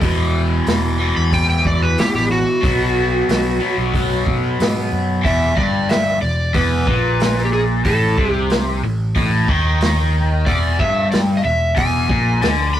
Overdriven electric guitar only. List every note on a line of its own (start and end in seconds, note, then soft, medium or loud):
0.01 0.97 E2 medium
0.01 0.98 B2 loud
0.01 0.98 E3 loud
0.99 2.62 E2 medium
0.99 2.60 B2 medium
0.99 2.61 E3 medium
2.61 3.58 B2 medium
2.61 3.59 F#3 loud
2.65 3.59 B3 loud
3.60 5.23 B2 medium
3.60 5.22 F#3 medium
3.60 5.21 B3 medium
5.23 5.55 E2 loud
5.56 6.21 G2 medium
6.22 6.48 E2 medium
6.54 6.86 E2 loud
6.87 7.84 A#2 loud
7.85 8.17 A2 loud
8.19 8.83 C3 loud
8.84 9.10 A2 medium
9.16 9.49 A2 loud
9.49 10.46 D#3 loud
10.47 10.78 E2 loud
10.80 11.44 G2 loud
11.44 11.70 E2 medium
11.76 12.08 E2 loud
12.10 12.41 A#2 loud
12.42 12.80 D3 loud